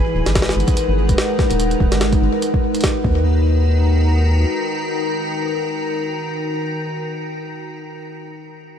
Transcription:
Already playing: G#3 G#4 B4
0.00 D#4
0.15 D#1
0.21 A#4 F#5
0.26 G#1, snare, closed hi-hat
0.35 kick, snare, closed hi-hat
0.42 snare
0.47 snare, closed hi-hat
0.53 G#1, closed hi-hat
0.60 closed hi-hat
0.68 kick, closed hi-hat
0.77 closed hi-hat
0.89 G#1
1.09 F#1, kick, closed hi-hat
1.18 snare
1.39 kick, snare
1.51 D#1, closed hi-hat
1.60 closed hi-hat
1.71 closed hi-hat
1.80 D#1, kick
1.92 G#1, snare, closed hi-hat
2.01 snare, closed hi-hat
2.12 kick, closed hi-hat
2.22 G#1
2.42 closed hi-hat
2.54 kick
2.75 closed hi-hat
2.81 snare, closed hi-hat
2.84 kick, closed hi-hat
2.88 closed hi-hat
3.04 D#2 D#3, kick
3.11 D#4
3.39 F#4
3.44 A#4
3.51 A#5

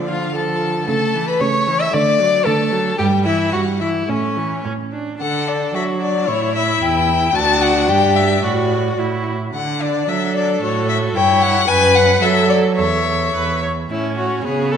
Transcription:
Already playing: D3 F3
0.08 F4 F5
0.34 F3 A4 A5
0.87 C#3 A3 A4 A5
1.15 E3
1.28 B4 B5
1.41 C#3 A3 C#5 C#6
1.68 E3
1.80 E5 E6
1.93 D3 A3 D5 D6
2.19 F#3
2.45 D3 A3 A4 A5
2.72 F#3
2.98 G2 G3 G4 G5
3.25 E3 E4 E5
3.53 G2 G3 F#4 F#5
3.81 E3 E4 E5
4.09 A2 A3 C#4 C#5
4.37 E3
4.65 A2 C#4
4.92 D4
5.20 D3 D4 A4 F#5
5.48 D5
5.75 F#3 F#4 E5
6.01 D5
6.27 A2 E4 C#5
6.55 E5
6.82 E2 G5
7.35 D2 D4 F#4 A5
7.62 F#5
7.89 G2 G4 G5
8.16 E5
8.44 A2 F#4 D5
8.99 A2 E4
9.54 D3 D4 F#5
9.82 D5
10.09 F#3 A4 E5
10.36 D5
10.62 A2 F#4 C#5
10.89 E5
11.15 G2 E4 C#5 G5
11.42 F#5
11.68 F#2 B4 G#5
11.95 F#5
12.22 F#3 A4 E5
12.49 D5
12.77 E2 A4 C#5 E5
13.35 E2 B4
13.62 C#5
13.90 A2 C#4 E4
14.17 F#4 C#5
14.44 C#3 B3 G#4 C#5
14.71 A4 C#5

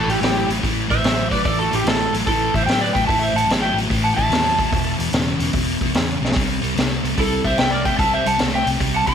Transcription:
0.06 A1 A2 E3 G4, open hi-hat
0.13 E4
0.20 A1 A2 F#3 E4 G4, snare, open hi-hat
0.47 A1 A2 F#3, open hi-hat
0.61 A1 A2 E3, kick, open hi-hat
0.88 A1 A2 E3 C5 E5, kick, open hi-hat
1.03 A1 A2 F#3, snare, open hi-hat
1.30 A2 F#3 B4 D5, kick, open hi-hat
1.43 A1 A2 E3 D5, kick, open hi-hat
1.47 A4
1.59 F#4 A4
1.71 A1 A2 E3 E4 G4, open hi-hat
1.85 A1 A2 F#3 E4 A4, snare, open hi-hat
2.12 A1 A2 F#3, open hi-hat
2.26 A1 A2 E3 E4 A4, kick, open hi-hat
2.53 A1 A2 E3 C5 E5, kick, open hi-hat
2.66 A2 F#3 E5 G5, snare, open hi-hat
2.81 B4 D5
2.93 A1 A2 F#3 E5 G5, kick, open hi-hat
3.07 A1 A2 E3 E5 A5, kick, open hi-hat
3.19 E5
3.24 C5
3.33 A1 A2 E3 F#5 A5
3.38 open hi-hat
3.47 A1 A2 F#3, open hi-hat
3.51 snare
3.62 E5 G5
3.74 A1 A2 F#3
3.78 open hi-hat
3.89 A1 A2 E3, kick, open hi-hat
4.04 F#5 A5
4.15 A1 A2 E3 E5 A5, kick, open hi-hat
4.29 D#2 A2 F#3, snare, open hi-hat
4.56 A2 F#3, kick, open hi-hat
4.70 E1 E2 B2, kick, open hi-hat
4.97 E1 E2 B2, open hi-hat
5.12 E1 E2 C#3, snare, open hi-hat
5.38 E1 E2 C#3, open hi-hat
5.52 E1 E2 B2, kick, open hi-hat
5.81 E1 E2 B2, kick, open hi-hat
5.93 E2 C#3, snare, open hi-hat
6.21 B1 E2 C#3
6.25 snare
6.32 C3 G3, snare
6.36 C2, kick, open hi-hat
6.61 C2 C3 G3, open hi-hat
6.75 C2 C3 A3, snare, open hi-hat
7.02 C2 C3 A3, open hi-hat
7.16 C2 C3 G3 E4 A4, kick, open hi-hat
7.44 C2 C3 G3 C5 E5, kick, open hi-hat
7.58 C2 C3 A3 E5 G5, snare, open hi-hat
7.71 A#4 D5
7.85 C3 A3 E5 G5, kick, open hi-hat
7.99 C2 C3 G3 E5 A5, kick, open hi-hat
8.14 C5 E5
8.25 C2 C3 G3 F#5 A5, open hi-hat
8.38 C2 C3 A3, snare, open hi-hat
8.54 E5 G5
8.65 C2 C3 A3, open hi-hat
8.79 C2 C3 G3, kick, open hi-hat
8.94 F#5 A5
9.07 C2 C3 G3 G5 C6, kick, open hi-hat

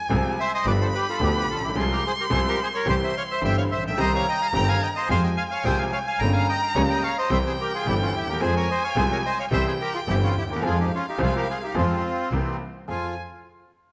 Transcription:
Already playing: G#5
0.09 C2 C3 F3 G#3 C4 G#4
0.40 C5 E5
0.54 C5 D#5
0.65 G1 G2 F3 B3 D4 G4 B4 D5 B5
0.81 A4 C5
0.95 G4 B4
1.09 F4 A4
1.20 D2 D3 F3 B3 D4 G4
1.24 D4
1.36 G4 B4
1.48 A#1 F4 A4
1.55 A1
1.63 A#1 E4 G4
1.69 B1
1.75 C2 C3 F3 G#3 C4 F4 G#4 C6
1.92 G4 A#4
2.07 G#4 C5
2.20 G4 A#4
2.30 C2 C3 F3 G#3 C4 G#4
2.34 G#4 C5
2.48 G4 A#4
2.62 G#4 C5
2.75 A#4 C#5
2.86 C2 C3 E3 G3 C4 G4 C5 C6
2.90 G4
3.03 C5 E5
3.17 C#5 F5
3.31 C5 E5
3.41 G1 G2 E3 G3 C4 G4 E5 G5
3.57 C#5 F5
3.70 A#1 C5 E5
3.77 A1
3.84 A#1 E5 G5
3.90 B1
3.97 C2 C3 D#3 G3 C4 G4 C5 D#5 A#5
4.15 C#5 F5
4.28 D#5 G5
4.42 F5 G#5
4.53 G1 G2 D#3 G3 C4 G4 G5 A#5
4.68 F5 G#5
4.83 D#5 G5
4.96 C5 D#5
5.09 F2 F3 G#3 C4 G4 C5 F5 G#5
5.23 D#5 G5
5.37 F5 G#5
5.51 C#5 F5
5.64 C2 C3 F3 G#3 C4 G4 C5 G5
5.77 F5 G#5
5.92 C#5 F5
6.07 F5 G#5
6.19 G1 G2 C#3 G3 A#3 G4 G5 A#5
6.33 F5 G#5
6.49 D#5 G5
6.62 G5 A#5
6.75 C#2 C#3 G3 A#3 G4 C#5 G#5
6.90 D#5 G5
7.03 C#5 F5
7.18 C5 D#5
7.30 C2 C3 E3 G3 C4 G4 C5 E5 G5
7.46 G#4 C5
7.61 G4 A#4
7.75 F4 G#4
7.85 G1 G2 E3 G3 C4 E4 G4
8.02 C#4 F4
8.14 D#2 E4 G4
8.20 D2
8.27 D#2 G4 A#4
8.33 E2
8.40 F2 F3 G#3 C4 G#4 C5 G#5
8.57 A#4 C#5
8.71 C5 D#5
8.84 C#5 F5
8.96 C2 C3 F3 G#3 C4 G#4 C5
9.12 A#4 C#5
9.26 C5 D#5
9.40 C#5 F5
9.51 C2 C3 E3 G3 C4 G4 C5 E5 G5
9.67 G#4 C5
9.81 G4 A#4
9.95 F4 G#4
10.07 G1 G2 E3 G3 C4 E4 G4
10.23 C#4 F4
10.36 D#2 E4 G4
10.43 D2
10.50 D#2 G4 A#4
10.56 E2
10.62 F2 F3 G#3 C4 G#4 F5
10.66 F4 G#4
10.80 D#4 G4
10.95 C#4 F4
11.09 D#4 G4
11.18 C2 C3 F3 G#3 C4 G#4
11.22 F4 G#4
11.36 G4 A#4
11.50 F4 G#4
11.59 G#4
11.63 D#4 G4
11.75 F2 F3 G#3 C4 F4 G#4
12.31 C2 C3 E3 A#3 C4 G4
12.88 F2 C4 F4 G#4 G#5

